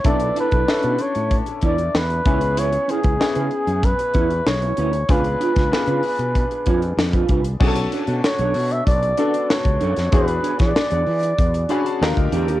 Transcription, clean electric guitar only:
\new Staff \with { instrumentName = "Clean electric guitar" } { \time 4/4 \key b \dorian \tempo 4 = 95 <d' e' a'>16 r16 <d' e' a'>16 <d' e' a'>16 r16 <d' e' a'>16 r4 <d' e' b'>16 r8. <cis' e' b'>16 r16 | <cis' e' b'>16 r16 <cis' e' b'>16 <cis' e' b'>16 r16 <cis' e' b'>16 r4 <cis' e' cis''>16 r8 <cis' e' b'>16 <cis' e' b'>16 r16 | <d' eis' b'>16 r16 <d' eis' b'>16 <d' eis' b'>16 r16 <d' eis' b'>16 r4 <d' eis' cis''>16 r8 <d' eis' b'>16 <d' eis' b'>16 r16 | <d' a' cis''>16 r16 <d' a' cis''>16 <d' a' cis''>16 r16 <d' a' cis''>16 r4 <d' a' d''>16 r8. <d' a' cis''>16 r16 |
<d' gis' cis''>16 r16 <d' gis' cis''>16 <d' gis' cis''>16 r16 <d' gis' cis''>16 r4 <d' gis' d''>16 r8. <d' g' ais'>16 <d' g' ais'>16 | }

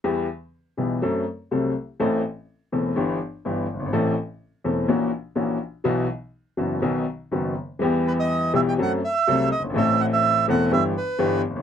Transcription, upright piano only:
\new Staff \with { instrumentName = "Upright piano" } { \clef bass \time 4/4 \key e \minor \tempo 4 = 124 <e, e g b g'>8 r4 <b,, b, e g b g'>8 <fis, fis a c' a'>8 r8 <c, c fis a c' a'>8 r8 | <a,, a, e a c' a'>8 r4 <e,, e, e a c' a'>8 <g,, g, e g b g'>8 r8 <g,, g, e g b g'>8 r32 fis,,32 g,,32 gis,,32 | <a,, a, e a c' a'>8 r4 <e,, e, e a c' a'>8 <ais,, ais, e ais cis' fis'>8 r8 <ais,, ais, e ais cis' fis'>8 r8 | <b,, b, e fis b fis'>8 r4 <fis,, fis, e fis b fis'>8 <b,, b, dis fis b fis'>8 r8 <fis,, fis, dis fis b fis'>8 r8 |
<e, e g b g'>4. <b,, b, e g b g'>8 <fis, fis a c' a'>8 r8 <c, c fis a c' a'>8 r32 fis,,32 g,,32 gis,,32 | <a,, a, e a c' a'>4. <e,, e, e a c' a'>8 <g,, g, e g b g'>8 r8 <g,, g, e g b g'>8 r32 fis,,32 g,,32 r32 | }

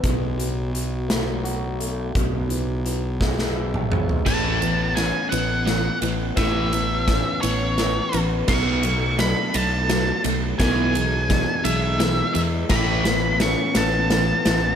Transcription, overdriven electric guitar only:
\new Staff \with { instrumentName = "Overdriven electric guitar" } { \clef bass \time 6/8 \key a \major \tempo 4. = 57 r2. | r2. | <a, e a>8 <a, e>8 <a, e>8 <a, e>8 <a, e>8 <a, e>8 | <a, e a>8 <a, e>8 <a, e>8 <a, e>8 <a, e>8 <a, e>8 |
<b, fis b>8 <b, fis>8 <b, fis>8 <b, fis>8 <b, fis>8 <b, fis>8 | <b, e b>8 <b, e>8 <b, e>8 <b, e>8 <b, e>8 <b, e>8 | <a, e a>8 <a, e>8 <a, e>8 <a, e>8 <a, e>8 <a, e>8 | }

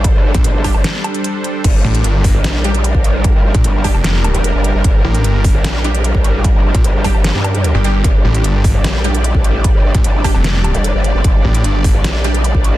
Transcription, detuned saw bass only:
\new Staff \with { instrumentName = "Detuned saw bass" } { \clef bass \time 4/4 \key g \minor \tempo 4 = 150 r8. bes,,16 r2. | r8 a,,8 g,,8. r2 r16 | r8. bes,,16 r8. f,,4 r4 r16 | r8 a,,8 g,,8. r2 r16 |
r8. bes,,16 r2 r16 g,,8. | r8 a,,8 g,,8. r2 r16 | r8. bes,,16 r8. f,,4 r4 r16 | r8 a,,8 g,,8. r2 r16 | }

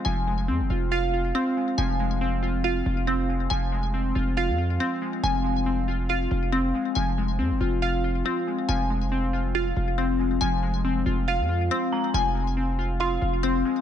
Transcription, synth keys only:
\new Staff \with { instrumentName = "Synth keys" } { \time 4/4 \key f \minor \tempo 4 = 139 f8 aes8 c'8 f'8 f''8 f'8 c'8 aes8 | f8 aes8 c'8 f'8 f''8 f'8 c'8 aes8 | f8 aes8 c'8 f'8 f''8 f'8 c'8 aes8 | f8 aes8 c'8 f'8 f''8 f'8 c'8 aes8 |
f8 aes8 c'8 f'8 f''8 f'8 c'8 aes8 | f8 aes8 c'8 f'8 f''8 f'8 c'8 aes8 | f8 aes8 c'8 f'8 f''8 f'8 c'8 aes8 | f8 aes8 c'8 f'8 f''8 f'8 c'8 aes8 | }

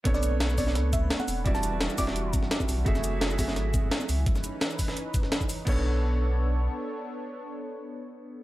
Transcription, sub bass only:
\new Staff \with { instrumentName = "Sub bass" } { \clef bass \time 4/4 \key b \minor \tempo 4 = 171 b,,2 cis,4 r8 e,,8~ | e,,4 r8 e,,4 r4 b,,8 | fis,,2 gis,,4 r8 cis,8 | r1 |
b,,2. r4 | r1 | }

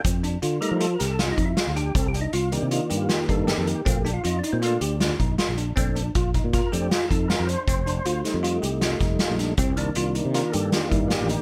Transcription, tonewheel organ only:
<<
  \new Staff \with { instrumentName = "Tonewheel organ" } { \time 5/4 \key f \mixolydian \tempo 4 = 157 r4. bes'8 \tuplet 3/2 { a'8 bes'8 a'8 f'8 ees'8 e'8 } f'8 g'8 | \tuplet 3/2 { a'8 g'8 ees'8 } f'8 g'8 \tuplet 3/2 { ees'8 d'8 f'8 } g'8 a'4 g'8 | \tuplet 3/2 { r8 g'8 f'8 ees'8 d'8 c'8 } d'4. r4. | r2 bes'8 g'8 f'8 a'8 bes'8 c''8~ |
c''2 r2. | r2 bes'8 a'8 g'8 e'8 f'8 g'8 | }
  \new Staff \with { instrumentName = "Tonewheel organ" } { \time 5/4 \key f \mixolydian r4. <g a ees'>8 r2. | r4. <ees bes d'>2.~ <ees bes d'>8 | <a bes f'>8 r4. <a bes f'>8 r2 r8 | <a c' d'>8 r2 <a c' d'>8 r2 |
r4. <g a ees'>2.~ <g a ees'>8 | r8 <ees bes d'>1~ <ees bes d'>8 | }
>>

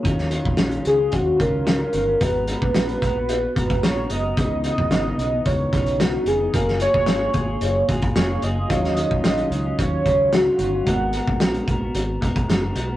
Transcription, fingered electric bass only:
\new Staff \with { instrumentName = "Fingered electric bass" } { \clef bass \time 4/4 \key dis \minor \tempo 4 = 111 dis,8. ais,,8. cis,8 dis,8 cis,4 g,,8 | gis,,8. ais,,8. ais,,4 gis,,8 ais,,8 fis,,8 | cis,8. gis,,8. b,,8 cis,8 b,,4 eis,,8 | fis,,8. gis,,8. gis,,8 fis,,8 gis,,8 eis,,8 fis,,8 |
dis,8. ais,,8. cis,8 dis,8 cis,4 g,,8 | gis,,8. ais,,8. ais,,8 gis,,8 ais,,8 fis,,8 b,,8 | }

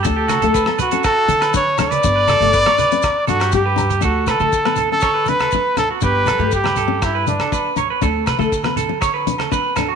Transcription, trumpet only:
\new Staff \with { instrumentName = "Trumpet" } { \time 4/4 \key d \major \tempo 4 = 120 a'4. fis'8 a'4 cis''8 d''8~ | d''2~ d''8 fis'8 g'4 | fis'8 a'4~ a'16 a'8. b'4 a'8 | b'4 g'4 e'8 d'4 r8 |
r1 | }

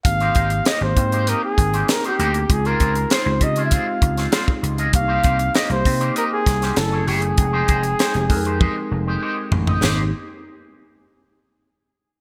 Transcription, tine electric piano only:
\new Staff \with { instrumentName = "Tine electric piano" } { \time 4/4 \key aes \major \tempo 4 = 98 <bes c' ees' g'>4 r16 <bes c' ees' g'>16 <bes c' ees' g''>4.~ <bes c' ees' g''>16 r8. | <aes c' ees' f'>4 r16 <aes c' ees' f'>16 <aes c' ees' g'>4.~ <aes c' ees' g'>16 r8. | <bes c' des' ees' g'>4 r16 <bes c' ees' g'>16 <bes c' ees' g''>4. <a des' fes' aes''>8. r16 | <aes c' ees' g''>4 r16 <aes c' ees' g'>16 <aes c' ees' a' bes'>4.~ <aes c' ees' a' bes'>16 r8. |
<bes c' ees' g'>8 r2. r8 | }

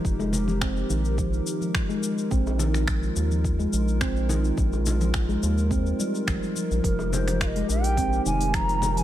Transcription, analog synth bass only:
\new Staff \with { instrumentName = "Analog synth bass" } { \clef bass \time 4/4 \key f \minor \tempo 4 = 106 f,,4. bes,,4 r4. | bes,,4. ees,4 bes,,4. | bes,,4. ees,4 r8 aes,,16 r8 bes,,16 | f,,4. bes,,4 f,,4. | }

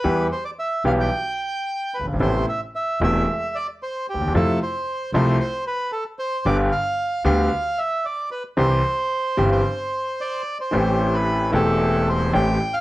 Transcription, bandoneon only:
\new Staff \with { instrumentName = "Bandoneon" } { \time 4/4 \key c \major \tempo 4 = 113 b'8 c''16 d''16 e''8 f''16 g''4.~ g''16 b'8 | c''8 e''8 e''8 e''4 d''8 c''8 g'8 | a'8 c''4 c''8 c''8 b'8 a'8 c''8 | d''8 f''4 f''4 e''8 d''8 b'8 |
c''4.~ c''16 c''4~ c''16 d''8. c''16~ | \key a \minor c''8. b'8. a'4 c''8 g''8. f''16 | }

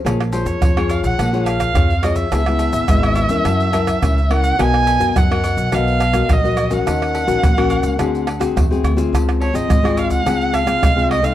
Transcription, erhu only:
\new Staff \with { instrumentName = "Erhu" } { \time 4/4 \key bes \minor \tempo 4 = 106 r8 c''16 des''8. f''16 ges''8. f''4 ees''16 e''16~ | e''2.~ e''8 ges''8 | aes''4 fis''4 f''4 dis''8. fis''16~ | fis''2~ fis''8. r4 r16 |
r8 des''16 ees''8. f''16 ges''8. f''4 ees''16 f''16 | }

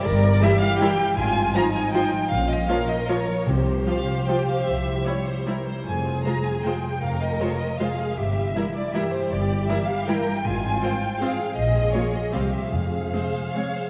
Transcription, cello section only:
\new Staff \with { instrumentName = "Cello section" } { \time 3/4 \key f \minor \tempo 4 = 155 bes'4 g'2 | f'4 ees'2 | des'4 bes'2 | g'2.~ |
g'2~ g'8 r8 | aes'2. | bes'2 aes'4 | g'4 e'4 g'4~ |
g'2 bes'4 | f'2 aes'4 | aes'2 g'4 | aes'2. | }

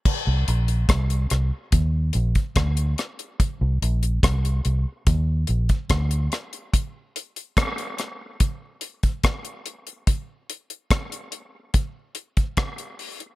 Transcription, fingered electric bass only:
\new Staff \with { instrumentName = "Fingered electric bass" } { \clef bass \time 4/4 \key bes \mixolydian \tempo 4 = 72 r16 c,16 bes,,8 c,8 c,16 r16 ees,8 bes,,16 r16 d,8 r8 | r16 c,16 bes,,8 c,8 c,16 r16 ees,8 bes,,16 r16 d,8 r8 | r1 | r1 | }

